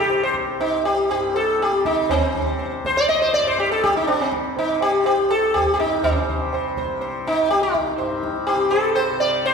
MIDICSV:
0, 0, Header, 1, 4, 480
1, 0, Start_track
1, 0, Tempo, 497512
1, 93, Time_signature, 4, 2, 24, 8
1, 4412, Tempo, 487805
1, 9299, End_track
2, 0, Start_track
2, 0, Title_t, "Sitar"
2, 0, Program_c, 0, 104
2, 0, Note_on_c, 0, 67, 87
2, 200, Note_off_c, 0, 67, 0
2, 225, Note_on_c, 0, 72, 74
2, 332, Note_off_c, 0, 72, 0
2, 584, Note_on_c, 0, 63, 68
2, 805, Note_off_c, 0, 63, 0
2, 823, Note_on_c, 0, 67, 75
2, 1057, Note_off_c, 0, 67, 0
2, 1068, Note_on_c, 0, 67, 73
2, 1310, Note_on_c, 0, 69, 83
2, 1312, Note_off_c, 0, 67, 0
2, 1553, Note_off_c, 0, 69, 0
2, 1566, Note_on_c, 0, 67, 74
2, 1789, Note_off_c, 0, 67, 0
2, 1793, Note_on_c, 0, 63, 78
2, 2032, Note_on_c, 0, 60, 77
2, 2035, Note_off_c, 0, 63, 0
2, 2500, Note_on_c, 0, 72, 35
2, 2724, Note_off_c, 0, 72, 0
2, 2758, Note_on_c, 0, 72, 86
2, 2768, Note_off_c, 0, 60, 0
2, 2866, Note_on_c, 0, 74, 90
2, 2873, Note_off_c, 0, 72, 0
2, 2975, Note_off_c, 0, 74, 0
2, 2979, Note_on_c, 0, 75, 91
2, 3100, Note_off_c, 0, 75, 0
2, 3104, Note_on_c, 0, 72, 84
2, 3218, Note_off_c, 0, 72, 0
2, 3221, Note_on_c, 0, 74, 97
2, 3332, Note_off_c, 0, 74, 0
2, 3350, Note_on_c, 0, 72, 82
2, 3466, Note_off_c, 0, 72, 0
2, 3470, Note_on_c, 0, 67, 82
2, 3581, Note_off_c, 0, 67, 0
2, 3585, Note_on_c, 0, 69, 84
2, 3700, Note_on_c, 0, 67, 85
2, 3705, Note_off_c, 0, 69, 0
2, 3822, Note_off_c, 0, 67, 0
2, 3828, Note_on_c, 0, 63, 75
2, 3927, Note_off_c, 0, 63, 0
2, 3930, Note_on_c, 0, 62, 78
2, 4056, Note_off_c, 0, 62, 0
2, 4061, Note_on_c, 0, 60, 63
2, 4169, Note_off_c, 0, 60, 0
2, 4424, Note_on_c, 0, 63, 70
2, 4654, Note_off_c, 0, 63, 0
2, 4658, Note_on_c, 0, 67, 89
2, 4880, Note_off_c, 0, 67, 0
2, 4892, Note_on_c, 0, 67, 85
2, 5132, Note_on_c, 0, 69, 93
2, 5144, Note_off_c, 0, 67, 0
2, 5360, Note_off_c, 0, 69, 0
2, 5364, Note_on_c, 0, 67, 85
2, 5545, Note_off_c, 0, 67, 0
2, 5557, Note_on_c, 0, 67, 68
2, 5611, Note_off_c, 0, 67, 0
2, 5615, Note_on_c, 0, 63, 82
2, 5843, Note_off_c, 0, 63, 0
2, 5856, Note_on_c, 0, 60, 75
2, 6102, Note_on_c, 0, 72, 37
2, 6327, Note_off_c, 0, 72, 0
2, 6346, Note_on_c, 0, 72, 38
2, 6543, Note_off_c, 0, 60, 0
2, 6569, Note_off_c, 0, 72, 0
2, 6583, Note_on_c, 0, 72, 37
2, 6800, Note_off_c, 0, 72, 0
2, 6812, Note_on_c, 0, 72, 35
2, 7042, Note_off_c, 0, 72, 0
2, 7070, Note_on_c, 0, 63, 81
2, 7294, Note_off_c, 0, 63, 0
2, 7298, Note_on_c, 0, 67, 97
2, 7415, Note_off_c, 0, 67, 0
2, 7419, Note_on_c, 0, 63, 78
2, 7766, Note_on_c, 0, 72, 37
2, 7997, Note_off_c, 0, 72, 0
2, 8100, Note_off_c, 0, 63, 0
2, 8243, Note_on_c, 0, 67, 77
2, 8244, Note_on_c, 0, 72, 34
2, 8470, Note_off_c, 0, 72, 0
2, 8478, Note_on_c, 0, 69, 83
2, 8483, Note_on_c, 0, 72, 36
2, 8500, Note_off_c, 0, 67, 0
2, 8707, Note_off_c, 0, 72, 0
2, 8718, Note_on_c, 0, 72, 33
2, 8723, Note_off_c, 0, 72, 0
2, 8723, Note_on_c, 0, 72, 92
2, 8736, Note_off_c, 0, 69, 0
2, 8955, Note_off_c, 0, 72, 0
2, 8966, Note_on_c, 0, 74, 93
2, 8970, Note_on_c, 0, 72, 38
2, 9193, Note_off_c, 0, 72, 0
2, 9217, Note_on_c, 0, 72, 94
2, 9218, Note_off_c, 0, 74, 0
2, 9299, Note_off_c, 0, 72, 0
2, 9299, End_track
3, 0, Start_track
3, 0, Title_t, "Tanpura"
3, 0, Program_c, 1, 104
3, 0, Note_on_c, 1, 36, 56
3, 0, Note_on_c, 1, 43, 59
3, 0, Note_on_c, 1, 48, 59
3, 503, Note_off_c, 1, 36, 0
3, 507, Note_on_c, 1, 36, 61
3, 1064, Note_off_c, 1, 43, 0
3, 1067, Note_on_c, 1, 43, 57
3, 1622, Note_off_c, 1, 48, 0
3, 1622, Note_on_c, 1, 48, 63
3, 2186, Note_off_c, 1, 48, 0
3, 2186, Note_on_c, 1, 48, 57
3, 2728, Note_off_c, 1, 36, 0
3, 2732, Note_on_c, 1, 36, 59
3, 3284, Note_off_c, 1, 43, 0
3, 3288, Note_on_c, 1, 43, 59
3, 3848, Note_off_c, 1, 48, 0
3, 3848, Note_on_c, 1, 48, 57
3, 4404, Note_off_c, 1, 48, 0
3, 4404, Note_on_c, 1, 48, 63
3, 4992, Note_off_c, 1, 36, 0
3, 4995, Note_on_c, 1, 36, 63
3, 5542, Note_off_c, 1, 43, 0
3, 5546, Note_on_c, 1, 43, 64
3, 6099, Note_off_c, 1, 48, 0
3, 6099, Note_on_c, 1, 48, 59
3, 6652, Note_off_c, 1, 48, 0
3, 6652, Note_on_c, 1, 48, 56
3, 7206, Note_off_c, 1, 36, 0
3, 7209, Note_on_c, 1, 36, 64
3, 7770, Note_off_c, 1, 43, 0
3, 7774, Note_on_c, 1, 43, 61
3, 8323, Note_off_c, 1, 48, 0
3, 8323, Note_on_c, 1, 48, 68
3, 8879, Note_off_c, 1, 48, 0
3, 8879, Note_on_c, 1, 48, 62
3, 9299, Note_off_c, 1, 36, 0
3, 9299, Note_off_c, 1, 43, 0
3, 9299, Note_off_c, 1, 48, 0
3, 9299, End_track
4, 0, Start_track
4, 0, Title_t, "Tabla"
4, 94, Note_on_c, 9, 60, 73
4, 190, Note_off_c, 9, 60, 0
4, 328, Note_on_c, 9, 37, 51
4, 424, Note_off_c, 9, 37, 0
4, 454, Note_on_c, 9, 62, 52
4, 550, Note_off_c, 9, 62, 0
4, 581, Note_on_c, 9, 63, 72
4, 677, Note_off_c, 9, 63, 0
4, 819, Note_on_c, 9, 60, 54
4, 915, Note_off_c, 9, 60, 0
4, 1057, Note_on_c, 9, 60, 78
4, 1153, Note_off_c, 9, 60, 0
4, 1296, Note_on_c, 9, 60, 60
4, 1393, Note_off_c, 9, 60, 0
4, 1539, Note_on_c, 9, 62, 68
4, 1636, Note_off_c, 9, 62, 0
4, 1664, Note_on_c, 9, 62, 55
4, 1760, Note_off_c, 9, 62, 0
4, 1788, Note_on_c, 9, 37, 62
4, 1885, Note_off_c, 9, 37, 0
4, 1909, Note_on_c, 9, 62, 57
4, 2005, Note_off_c, 9, 62, 0
4, 2022, Note_on_c, 9, 60, 100
4, 2022, Note_on_c, 9, 64, 92
4, 2118, Note_off_c, 9, 60, 0
4, 2118, Note_off_c, 9, 64, 0
4, 2265, Note_on_c, 9, 64, 65
4, 2362, Note_off_c, 9, 64, 0
4, 2501, Note_on_c, 9, 62, 77
4, 2598, Note_off_c, 9, 62, 0
4, 2626, Note_on_c, 9, 62, 59
4, 2722, Note_off_c, 9, 62, 0
4, 2748, Note_on_c, 9, 37, 55
4, 2845, Note_off_c, 9, 37, 0
4, 2864, Note_on_c, 9, 62, 54
4, 2961, Note_off_c, 9, 62, 0
4, 2980, Note_on_c, 9, 62, 74
4, 3076, Note_off_c, 9, 62, 0
4, 3218, Note_on_c, 9, 62, 62
4, 3314, Note_off_c, 9, 62, 0
4, 3457, Note_on_c, 9, 62, 71
4, 3553, Note_off_c, 9, 62, 0
4, 3582, Note_on_c, 9, 62, 54
4, 3678, Note_off_c, 9, 62, 0
4, 3704, Note_on_c, 9, 37, 62
4, 3801, Note_off_c, 9, 37, 0
4, 3826, Note_on_c, 9, 62, 60
4, 3922, Note_off_c, 9, 62, 0
4, 3940, Note_on_c, 9, 60, 72
4, 4037, Note_off_c, 9, 60, 0
4, 4173, Note_on_c, 9, 37, 52
4, 4269, Note_off_c, 9, 37, 0
4, 4288, Note_on_c, 9, 62, 55
4, 4385, Note_off_c, 9, 62, 0
4, 4405, Note_on_c, 9, 63, 80
4, 4503, Note_off_c, 9, 63, 0
4, 4643, Note_on_c, 9, 60, 59
4, 4742, Note_off_c, 9, 60, 0
4, 4888, Note_on_c, 9, 60, 81
4, 4987, Note_off_c, 9, 60, 0
4, 5133, Note_on_c, 9, 60, 65
4, 5231, Note_off_c, 9, 60, 0
4, 5375, Note_on_c, 9, 60, 76
4, 5375, Note_on_c, 9, 64, 62
4, 5474, Note_off_c, 9, 60, 0
4, 5474, Note_off_c, 9, 64, 0
4, 5619, Note_on_c, 9, 62, 59
4, 5718, Note_off_c, 9, 62, 0
4, 5852, Note_on_c, 9, 60, 93
4, 5852, Note_on_c, 9, 64, 90
4, 5950, Note_off_c, 9, 60, 0
4, 5950, Note_off_c, 9, 64, 0
4, 6098, Note_on_c, 9, 64, 63
4, 6196, Note_off_c, 9, 64, 0
4, 6336, Note_on_c, 9, 60, 78
4, 6435, Note_off_c, 9, 60, 0
4, 6577, Note_on_c, 9, 37, 55
4, 6676, Note_off_c, 9, 37, 0
4, 6818, Note_on_c, 9, 62, 83
4, 6916, Note_off_c, 9, 62, 0
4, 7064, Note_on_c, 9, 62, 66
4, 7163, Note_off_c, 9, 62, 0
4, 7301, Note_on_c, 9, 62, 72
4, 7399, Note_off_c, 9, 62, 0
4, 7419, Note_on_c, 9, 62, 61
4, 7518, Note_off_c, 9, 62, 0
4, 7538, Note_on_c, 9, 37, 61
4, 7637, Note_off_c, 9, 37, 0
4, 7657, Note_on_c, 9, 62, 67
4, 7756, Note_off_c, 9, 62, 0
4, 7778, Note_on_c, 9, 60, 73
4, 7876, Note_off_c, 9, 60, 0
4, 8015, Note_on_c, 9, 37, 55
4, 8113, Note_off_c, 9, 37, 0
4, 8135, Note_on_c, 9, 62, 58
4, 8233, Note_off_c, 9, 62, 0
4, 8261, Note_on_c, 9, 63, 82
4, 8359, Note_off_c, 9, 63, 0
4, 8495, Note_on_c, 9, 60, 57
4, 8593, Note_off_c, 9, 60, 0
4, 8736, Note_on_c, 9, 60, 79
4, 8834, Note_off_c, 9, 60, 0
4, 8972, Note_on_c, 9, 60, 65
4, 9070, Note_off_c, 9, 60, 0
4, 9210, Note_on_c, 9, 62, 76
4, 9299, Note_off_c, 9, 62, 0
4, 9299, End_track
0, 0, End_of_file